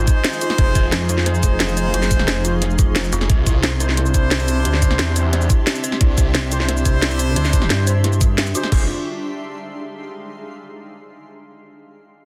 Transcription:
Already playing: D#4 F4 G#4 C5 F5 C6
0.08 C5, kick, closed hi-hat, shaker
0.24 C5, snare, closed hi-hat
0.33 shaker
0.41 F4, closed hi-hat, shaker
0.50 snare
0.58 F1 C5, kick, closed hi-hat
0.75 C5, kick, closed hi-hat, shaker
0.92 F2 F4, snare, closed hi-hat
1.09 D#4 G#4 C5, closed hi-hat, shaker
1.18 D#4 G#4 C5, snare
1.26 C5, snare, closed hi-hat
1.35 shaker
1.43 F1 F4, kick, closed hi-hat, shaker
1.60 C5, snare, closed hi-hat
1.69 shaker
1.77 C5, closed hi-hat, shaker
1.94 F#1 F4, closed hi-hat
2.02 snare, shaker
2.11 C5, kick, closed hi-hat, shaker
2.19 snare
2.28 F1 C5, snare, closed hi-hat
2.45 D#4 F4 G#4 C5, open hi-hat, shaker
2.62 C5, snare, closed hi-hat
2.70 shaker
2.79 F4, kick, closed hi-hat, shaker
2.96 C5, snare, closed hi-hat
3.04 shaker
3.13 F1 F4, closed hi-hat, shaker
3.21 snare
3.29 C2 C4 D4 G4 C5 D5 E5, kick, closed hi-hat
3.35 G4
3.46 E4, kick, closed hi-hat, shaker
3.63 C2 C5, snare, closed hi-hat
3.80 D4 E4 C5, closed hi-hat, shaker
3.89 D4 E4 C5, snare
3.94 E4 E5, snare, closed hi-hat
4.06 shaker
4.14 C2 C5, kick, closed hi-hat, shaker
4.31 C5, snare, closed hi-hat
4.40 shaker
4.48 E4, closed hi-hat, shaker
4.65 D2 C5, closed hi-hat
4.74 snare
4.82 C5, kick, closed hi-hat, shaker
4.91 snare
4.99 E2 E4, snare, closed hi-hat
5.16 D4 E4 C5, open hi-hat, shaker
5.33 C5, snare, closed hi-hat
5.41 shaker
5.50 E4, kick, closed hi-hat, shaker
5.67 C5, snare, closed hi-hat
5.75 shaker
5.84 C5, closed hi-hat, shaker
5.92 snare
6.01 C2 E4, kick, closed hi-hat
6.18 C5, kick, closed hi-hat, shaker
6.35 C2 C5, snare, closed hi-hat
6.52 D4 E4 C5, closed hi-hat, shaker
6.60 D4 E4 C5, snare
6.69 C5, snare, closed hi-hat
6.77 shaker
6.85 C2 C5, kick, closed hi-hat, shaker
7.02 E4, snare, closed hi-hat
7.11 shaker
7.19 C5, closed hi-hat, shaker
7.36 D2 C5, closed hi-hat
7.45 snare, shaker
7.53 E4, kick, closed hi-hat, shaker
7.62 snare
7.70 G2 C5, snare, closed hi-hat
7.87 D4 E4 C5, open hi-hat, shaker
8.04 E4, snare, closed hi-hat
8.13 shaker
8.21 G4, kick, closed hi-hat, shaker
8.38 E5, snare, closed hi-hat
8.47 shaker
8.55 D#4 F#4 G#4 C5, closed hi-hat, shaker
8.63 snare
8.72 F1 D#4 G#4 C5, kick, crash

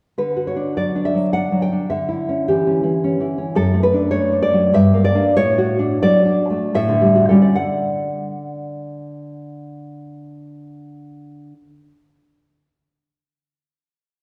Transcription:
0.18 D3 B4
0.36 F#4
0.47 C#5
0.56 D4
0.77 F#3 D5
0.95 D4
1.05 E5
1.14 F#3
1.33 D4 F#5
1.52 F#3
1.62 G5
1.72 D4
1.90 D3 E5
2.09 E4
2.29 C#4
2.48 E3 G4
2.67 C#4
2.84 E3
3.04 C#4
3.20 E3
3.38 C#4
3.55 F#2 A4
3.74 A3
3.83 B4
3.94 D4
4.11 A3 C#5
4.32 D4
4.43 D5
4.53 F#3
4.74 G2 E5
4.94 A#3
5.04 D5
5.15 A#3 D4
5.37 A2 C#5
5.58 F#4
5.79 D4
6.02 F#3 D5
6.25 D4
6.50 A3
6.75 A2 E5
6.89 D3
7.01 G3
7.15 F#4
7.29 G3 C#4 A4
7.42 D5
7.55 F#5

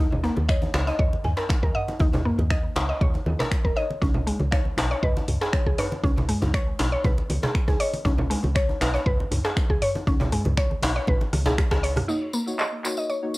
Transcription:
Already playing: D#5
0.00 D#2
0.12 low conga
0.24 A#3, djembe tone
0.37 D#2, muted conga, high conga
0.49 C#5 D#5, finger snap, kick
0.62 djembe tone, high conga
0.74 C#2, finger snap, djembe slap, muted conga, djembe bass
0.87 D#5, djembe tone
0.99 D#2 C#5 D#5, kick, mid tom
1.13 muted conga
1.24 D#2 G#5, mid tom, djembe tone
1.37 A#4, djembe slap
1.49 finger snap, kick, muted conga, djembe tone, high conga
1.63 D#2 A#4, kick
1.75 D#5 F#5, mid tom
1.88 muted conga, djembe tone
2.00 D#2 D#4, kick, high conga, djembe bass
2.13 djembe tone, low conga
2.25 A#3, mid tom
2.39 D#2, mid tom, muted conga, high conga
2.50 D#5, finger snap, kick, djembe tone
2.76 C#2, djembe slap, djembe tone, djembe bass
2.89 D#5
3.01 D#2 C#5, kick, high conga, low conga
3.14 muted conga, djembe tone
3.26 D#2, high conga
3.39 A#4, djembe slap, djembe tone, low conga
3.51 finger snap, kick, muted conga
3.65 D#1 A#4, kick
3.76 C#5 D#5, djembe tone
3.90 muted conga
4.02 C#2 C#4, kick, high conga, djembe bass
4.14 low conga
4.27 G#3, open hi-hat, djembe tone
4.40 C#2, muted conga, high conga
4.51 C#5 F5, finger snap, kick, djembe tone
4.65 high conga
4.77 B1, finger snap, open hi-hat, muted conga, djembe slap, djembe bass
4.91 C#5, djembe tone
5.03 C#2 B4 D#5, kick, mid tom
5.17 muted conga, djembe tone
5.28 C#2, mid tom, open hi-hat
5.41 G#4, djembe slap
5.53 C#5, finger snap, kick, muted conga, high conga, djembe tone
5.66 C#2 G#4, kick
5.78 B4 C#5, mid tom, open hi-hat, djembe tone
5.92 muted conga
6.04 C#2 C#4, kick, high conga, djembe bass
6.17 djembe tone, low conga
6.29 G#3, mid tom, open hi-hat
6.42 C#2, mid tom, muted conga, djembe tone, high conga
6.54 C#5, finger snap, kick
6.79 B1, open hi-hat, djembe slap, djembe tone, djembe bass
6.92 C#5
7.04 C#2 B4, kick, high conga, djembe tone, low conga
7.18 muted conga
7.30 C#2, open hi-hat, high conga
7.43 G#4, djembe slap, djembe tone, low conga
7.55 finger snap, kick, muted conga
7.68 C#2 G#4, kick, djembe tone
7.80 C#5 D#5, open hi-hat
7.94 open hi-hat, muted conga
8.05 C#2 C#4, kick, high conga, djembe tone, djembe bass
8.18 low conga
8.30 G#3, open hi-hat, djembe tone
8.44 C#2, muted conga, high conga
8.55 C#5, finger snap, kick
8.69 high conga, djembe tone
8.81 B1 B4, finger snap, open hi-hat, djembe slap, djembe bass
8.94 C#5, djembe tone
9.06 C#2 B4, kick, mid tom
9.20 muted conga
9.31 C#2, mid tom, open hi-hat, djembe tone
9.45 G#4, djembe slap
9.57 finger snap, kick, muted conga, djembe tone, high conga
9.70 C#2 G#4, kick
9.82 C#5, mid tom, open hi-hat
9.95 muted conga, djembe tone
10.07 C#2 C#4, kick, high conga, djembe bass
10.20 djembe tone, low conga
10.32 G#3, mid tom, open hi-hat
10.45 C#2, mid tom, muted conga, high conga
10.57 C#5, finger snap, kick, djembe tone
10.71 high conga
10.82 B1, open hi-hat, muted conga, djembe slap, djembe tone, djembe bass
10.96 C#5
11.07 G#1 B4, kick, high conga, low conga
11.21 muted conga, djembe tone
11.33 C#2, cross-stick, open hi-hat, high conga
11.46 G#4, djembe slap, djembe tone, low conga
11.58 finger snap, kick, cross-stick, muted conga
11.71 C#2 G#4, kick, cross-stick, djembe slap
11.83 C#5, open hi-hat, djembe tone
11.96 cross-stick, mid tom, open hi-hat, muted conga, low conga
12.08 A#3 D#4 F#4 C#5, crash, tambourine
12.33 A#3, tambourine
12.47 A#3 D#4 F#4 C#5, tambourine
12.59 D#5, finger snap, clap, tambourine
12.84 A#3 D#4 F#4 C#5, finger snap, clap, tambourine
12.97 D#5, tambourine
13.09 C#5, tambourine
13.23 A#3 D#4 F#4 C#5
13.34 tambourine

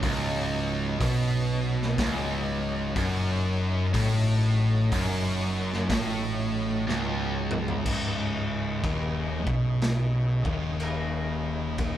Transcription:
Already playing: C#3 D#4
0.02 C#1 C#2 F#3, kick, open hi-hat
1.00 B1 B2, kick, open hi-hat
1.82 snare
1.98 C#1 C#2, kick, snare, open hi-hat
2.96 F#1 F#2, kick, open hi-hat
3.93 A1 A2, kick, open hi-hat
4.91 F#1 F#2, kick, open hi-hat
5.73 snare
5.89 A1 A2, kick, snare, open hi-hat
6.87 C#1 C#2, snare
7.51 mid tom
7.68 floor tom
7.85 C#1 C#2 C#3 G#3 D#4, kick, crash
8.83 D#1 D#2, kick, crash
9.46 B1 B2, kick
9.82 snare, crash
10.44 D#1 D#2, kick
10.80 crash
11.78 kick, crash

